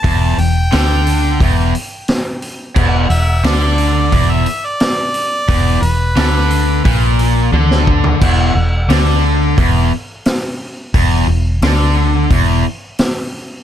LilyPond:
<<
  \new Staff \with { instrumentName = "Harmonica" } { \time 4/4 \key d \mixolydian \tempo 4 = 88 a''8 g''2 r4. | r8 e''8 d''4 d''16 e''8 d''4~ d''16~ | d''8 b'2 r4. | r1 |
r1 | }
  \new Staff \with { instrumentName = "Overdriven electric guitar" } { \clef bass \time 4/4 \key d \mixolydian e,8 e,8 d4 e,8 r4. | e,8 e,8 d4 e,8 r4. | e,8 e,8 d4 ais,4 d4 | e,8 e,8 d4 e,8 r4. |
e,8 e,8 d4 e,8 r4. | }
  \new Staff \with { instrumentName = "Fingered electric bass" } { \clef bass \time 4/4 \key d \mixolydian e,,8 e,,8 d,4 e,,8 r4. | e,,8 e,,8 d,4 e,,8 r4. | e,,8 e,,8 d,4 ais,,4 d,4 | e,,8 e,,8 d,4 e,,8 r4. |
e,,8 e,,8 d,4 e,,8 r4. | }
  \new DrumStaff \with { instrumentName = "Drums" } \drummode { \time 4/4 <hho bd>8 hho8 <hho sn>8 hho8 <hho bd>8 hho8 <hho sn>8 hho8 | <cymc bd>8 hho8 <hho sn>8 hho8 <hho bd>8 hho8 <hho sn>8 hho8 | <hho bd>8 hho8 <hho sn>8 hho8 <hho bd>8 hho8 tommh16 sn16 bd16 tomfh16 | <cymc bd>4 <hho sn>4 <hho bd>4 <hho sn>4 |
<hho bd>4 <hho sn>4 <hho bd>4 <hho sn>4 | }
>>